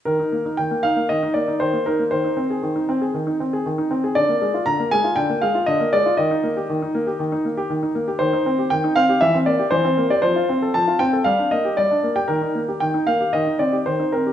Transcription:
\new Staff \with { instrumentName = "Grand piano" } { \time 4/4 \key ees \major \tempo 4 = 117 << { bes'4 g''8 f''8 ees''8 d''8 c''8 bes'8 | c''2.~ c''8 r8 | d''4 bes''8 aes''8 g''8 f''8 ees''8 d''8 | ees''2.~ ees''8 r8 |
\key c \dorian c''4 g''8 f''8 e''8 d''8 c''8. d''16 | c''4 a''8 g''8 f''8 ees''8 d''8. g''16 | bes'4 g''8 f''8 ees''8 d''8 c''8 bes'8 | } \\ { ees16 ees'16 bes16 ees'16 ees16 bes16 ees'16 bes16 ees16 ees'16 bes16 ees'16 ees16 bes16 ees'16 bes16 | ees16 ees'16 c'16 aes'16 ees16 ees'16 c'16 aes'16 ees16 ees'16 c'16 aes'16 ees16 ees'16 c'16 aes'16 | d16 bes16 aes16 f'16 d16 bes16 aes16 f'16 d16 bes16 aes16 f'16 d16 bes16 aes16 f'16 | ees16 ees'16 bes16 g'16 ees16 ees'16 bes16 g'16 ees16 ees'16 bes16 g'16 ees16 ees'16 bes16 g'16 |
ees16 ees'16 c'16 g'16 ees16 ees'16 c'16 g'16 e16 c'16 bes16 g'16 e16 c'16 bes16 g'16 | f16 f'16 c'16 a'16 f16 f'16 c'16 a'16 g16 d'16 bes16 g'16 g16 d'16 bes16 g'16 | ees16 ees'16 bes16 g'16 ees16 ees'16 bes16 g'16 ees16 ees'16 c'16 g'16 ees16 ees'16 c'16 g'16 | } >> }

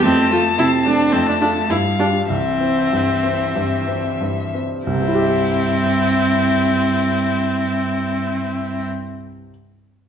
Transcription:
<<
  \new Staff \with { instrumentName = "Violin" } { \time 4/4 \key c \major \tempo 4 = 92 a''2 a''4 f''4 | e''2.~ e''8 r8 | e'1~ | e'1 | }
  \new Staff \with { instrumentName = "Viola" } { \time 4/4 \key c \major c'8 f'8 e'8 d'8 c'16 d'16 d'8 e'8 d'8 | c'2. r4 | c'1~ | c'1 | }
  \new Staff \with { instrumentName = "Grand piano" } { \time 4/4 \key c \major f,8 a8 c8 a8 f,8 <f' a'>8 g,8 <f' g'>8 | c,8 c'8 g,8 c'8 g,8 c'8 g,8 c'8 | <c, c c' e' g' e''>1~ | <c, c c' e' g' e''>1 | }
  \new Staff \with { instrumentName = "Cello" } { \clef bass \time 4/4 \key c \major a4 c'4 a4 g4 | e2.~ e8 r8 | g,1~ | g,1 | }
>>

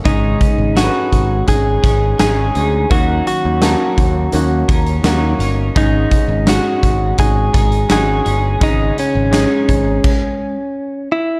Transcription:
<<
  \new Staff \with { instrumentName = "Clean electric guitar" } { \time 4/4 \key gis \phrygian \tempo 4 = 84 dis'4 fis'4 gis'4 gis'4 | fis'8 fis'2. r8 | dis'4 fis'4 gis'4 gis'4 | dis'8 cis'2. e'8 | }
  \new Staff \with { instrumentName = "Clean electric guitar" } { \time 4/4 \key gis \phrygian <gis, cis gis cis' dis' gis'>4 <gis cis' dis' gis'>4. <gis cis' dis' gis'>8 <gis cis' dis' gis'>8 <gis cis' dis' gis'>8 | <dis fis cis' dis' ais'>4 <fis cis' dis' ais'>4. <cis' dis' ais'>8 <fis cis' dis' ais'>8 <cis' dis' ais'>8 | <gis, cis gis cis' dis' gis'>4 <gis cis' dis' gis'>4. <gis cis' dis' gis'>8 <gis cis' dis' gis'>8 <gis cis' dis' gis'>8 | <gis, cis gis cis' dis' gis'>4 <gis cis' dis' gis'>4 r2 | }
  \new Staff \with { instrumentName = "Grand piano" } { \time 4/4 \key gis \phrygian <gis cis' dis' gis'>4 <gis cis' dis' a' b'>4 <gis cis' dis' gis'>4 <gis cis' dis' gis'>4 | <ais cis' dis' fis'>4 <ais cis' dis' a''>4 <ais cis' dis' fis'>4 <ais cis' dis' fis'>4 | <gis cis' dis' gis'>4 <gis cis' dis' fis'>4 <gis cis' dis' fis'>4 <gis cis' dis' fis'>4 | <gis cis' dis' gis'>4 <gis cis' dis' gis'>4 r2 | }
  \new Staff \with { instrumentName = "Grand piano" } { \clef bass \time 4/4 \key gis \phrygian gis,4. r2 r8 | dis4. r2 r8 | gis,4. r2 r8 | gis,4. r2 r8 | }
  \new Staff \with { instrumentName = "Picked electric bass" } { \clef bass \time 4/4 \key gis \phrygian gis,,8 r16 gis,,8 r16 gis,,8 gis,,8 gis,,8 gis,,8 d,8 | dis,8 r16 dis,8 r16 dis,8 dis,8 dis,8 dis,8 g,,8 | gis,,8 r16 gis,,8 r16 gis,,8 gis,,8 gis,,8 gis,,8 g,,8 | gis,,8 r16 gis,,8 r16 gis,,8 r2 | }
  \new DrumStaff \with { instrumentName = "Drums" } \drummode { \time 4/4 <hh bd>8 <hh bd>8 <hh sn>8 <hh bd>8 <hh bd>8 <hh bd sn>8 <hh sn>8 hh8 | <hh bd>8 hh8 <hh sn>8 <hh bd>8 hh8 <hh bd>16 hh16 <hh sn>8 hh8 | <hh bd>8 <hh bd>8 <hh sn>8 <hh bd>8 <hh bd>8 <hh bd>16 hh16 <hh sn>8 hh8 | <hh bd>8 hh8 <hh sn>8 <hh bd>8 <cymc bd>4 r4 | }
>>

